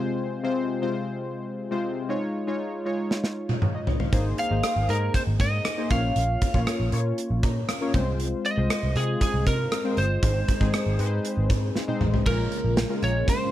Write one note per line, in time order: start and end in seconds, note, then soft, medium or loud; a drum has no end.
0.00 0.35 C3 medium
0.00 0.35 G#3 medium
0.00 0.36 C4 medium
0.00 0.36 F4 medium
0.00 0.39 C5 loud
0.00 2.11 G#5 medium
0.43 0.77 C3 medium
0.43 0.77 G#3 medium
0.43 0.77 C4 medium
0.43 0.77 F4 medium
0.43 0.77 C5 medium
0.82 1.59 C3 medium
0.82 1.59 G#3 medium
0.82 1.59 C4 medium
0.82 1.60 F4 medium
0.82 1.60 C5 medium
1.71 2.04 C3 medium
1.71 2.04 G#3 medium
1.71 2.04 C4 medium
1.71 2.05 F4 medium
1.71 2.05 C5 medium
2.09 2.42 G#3 medium
2.09 2.42 D#4 medium
2.09 2.43 F4 medium
2.09 2.43 C#5 medium
2.47 2.80 G#3 medium
2.47 2.81 D#4 medium
2.47 2.81 F4 medium
2.47 2.81 C#5 medium
2.85 3.63 G#3 medium
2.85 3.63 D#4 medium
2.85 3.63 F4 medium
2.85 3.61 C#5 medium
3.11 snare medium
3.24 snare medium
3.49 high tom medium
3.62 3.74 C#5 medium
3.62 mid tom medium
3.75 3.99 D#5 medium
3.87 floor tom medium
4.00 4.24 F5 medium
4.00 floor tom medium
4.12 4.32 G#1 medium
4.12 4.46 A#3 medium
4.12 4.46 D#4 medium
4.12 4.46 G#4 medium
4.12 4.46 C5 medium
4.12 kick loud
4.12 closed hi-hat medium
4.38 4.91 F5 loud
4.38 closed hi-hat medium
4.50 4.60 G#1 medium
4.50 4.84 A#3 medium
4.50 4.84 D#4 medium
4.50 4.84 G#4 medium
4.50 4.84 C5 medium
4.63 cross-stick loud
4.63 closed hi-hat medium
4.76 4.86 G#1 medium
4.89 5.08 G#2 medium
4.89 5.66 A#3 medium
4.89 5.66 D#4 medium
4.89 5.67 G#4 medium
4.89 5.67 A#4 medium
4.89 5.15 A#4 medium
4.89 closed hi-hat medium
5.14 5.22 C5 medium
5.14 kick medium
5.14 closed hi-hat medium
5.27 5.37 G#1 medium
5.40 5.59 G#2 medium
5.40 5.91 D#5 medium
5.40 kick medium
5.40 closed hi-hat medium
5.65 cross-stick loud
5.65 closed hi-hat medium
5.78 5.89 A#3 medium
5.78 5.91 D#4 medium
5.78 5.91 G#4 medium
5.78 5.91 C5 medium
5.90 6.10 A#1 medium
5.90 6.46 A#3 medium
5.90 6.46 C#4 medium
5.90 6.46 F4 medium
5.90 6.46 C#5 medium
5.90 6.89 F5 medium
5.90 kick medium
5.90 closed hi-hat medium
6.16 6.35 A#1 loud
6.16 closed hi-hat medium
6.42 kick medium
6.42 closed hi-hat medium
6.54 6.64 A#1 medium
6.54 6.87 A#3 medium
6.54 6.87 C#4 medium
6.54 6.88 F4 medium
6.54 6.88 C#5 medium
6.54 kick medium
6.67 cross-stick loud
6.67 closed hi-hat medium
6.80 6.89 A#1 medium
6.92 7.11 A#2 medium
6.92 7.70 A#3 medium
6.92 7.70 C#4 medium
6.92 7.70 F4 medium
6.92 7.70 C#5 medium
6.92 closed hi-hat medium
7.18 closed hi-hat medium
7.30 7.40 A#1 medium
7.43 7.62 A#2 medium
7.43 7.67 A#5 medium
7.43 kick medium
7.43 closed hi-hat medium
7.69 8.16 F5 medium
7.69 cross-stick loud
7.69 closed hi-hat medium
7.81 7.94 A#3 medium
7.81 7.94 C#4 medium
7.81 7.93 F4 medium
7.81 7.95 C#5 medium
7.94 8.32 C2 medium
7.94 8.49 G#3 medium
7.94 8.49 C4 medium
7.94 8.50 F4 medium
7.94 8.50 C5 loud
7.94 kick medium
7.94 closed hi-hat medium
8.20 closed hi-hat medium
8.45 8.98 D#5 loud
8.45 closed hi-hat medium
8.57 8.67 C2 medium
8.57 8.91 G#3 medium
8.57 8.91 C4 medium
8.57 8.91 F4 medium
8.57 8.91 C5 medium
8.70 cross-stick loud
8.70 closed hi-hat medium
8.83 8.93 C2 medium
8.95 9.15 C3 medium
8.95 9.73 G#3 medium
8.95 9.73 C4 medium
8.95 9.73 F4 medium
8.95 9.21 G#4 medium
8.95 9.73 D#5 medium
8.95 closed hi-hat medium
9.21 9.47 G#4 medium
9.21 kick medium
9.21 closed hi-hat medium
9.34 9.43 C2 medium
9.47 9.66 C3 medium
9.47 9.99 A#4 medium
9.47 kick medium
9.47 closed hi-hat medium
9.72 cross-stick loud
9.72 closed hi-hat medium
9.84 10.17 G#3 medium
9.84 10.18 C4 medium
9.84 10.18 F4 medium
9.84 10.18 C5 medium
9.97 10.16 G1 medium
9.97 11.72 C5 medium
9.97 closed hi-hat medium
10.22 10.42 G#1 medium
10.22 10.56 G#3 medium
10.22 10.56 C4 medium
10.22 10.56 D#4 medium
10.22 10.56 C5 medium
10.22 kick medium
10.22 closed hi-hat medium
10.48 kick medium
10.48 closed hi-hat medium
10.60 10.70 G#1 medium
10.60 10.94 G#3 medium
10.60 10.94 C4 medium
10.60 10.94 D#4 medium
10.60 10.94 G#4 medium
10.60 kick medium
10.73 cross-stick loud
10.73 closed hi-hat medium
10.86 10.96 G#1 medium
10.99 11.18 G#2 medium
10.99 11.76 G#3 medium
10.99 11.76 C4 medium
10.99 11.77 D#4 medium
10.99 11.06 B4 medium
10.99 closed hi-hat medium
11.06 11.80 C5 medium
11.25 closed hi-hat medium
11.37 11.47 G#1 medium
11.50 11.69 G#2 medium
11.50 kick medium
11.50 closed hi-hat medium
11.76 snare medium
11.88 12.21 G#3 medium
11.88 12.21 C4 medium
11.88 12.21 D#4 medium
11.88 12.22 C5 medium
11.88 high tom soft
12.01 12.20 A1 medium
12.01 mid tom medium
12.14 floor tom medium
12.26 12.45 A#1 medium
12.26 13.52 C#3 medium
12.26 12.81 G#3 medium
12.26 13.52 G#3 medium
12.26 13.52 A#3 medium
12.26 12.81 C#4 medium
12.26 13.52 F4 medium
12.26 12.82 F4 medium
12.26 13.05 A#4 medium
12.26 12.82 A#4 medium
12.26 kick loud
12.26 crash medium
12.52 closed hi-hat medium
12.64 12.83 A#1 loud
12.77 snare loud
12.77 closed hi-hat medium
12.89 13.01 G#3 medium
12.89 13.01 C#4 medium
12.89 13.01 F4 medium
12.89 13.01 A#4 medium
13.02 13.22 A#1 medium
13.02 13.46 G#3 medium
13.02 13.47 C#4 medium
13.02 13.47 F4 medium
13.02 13.47 A#4 medium
13.02 13.29 C#5 loud
13.02 closed hi-hat medium
13.28 13.52 C5 medium
13.28 kick medium
13.28 closed hi-hat medium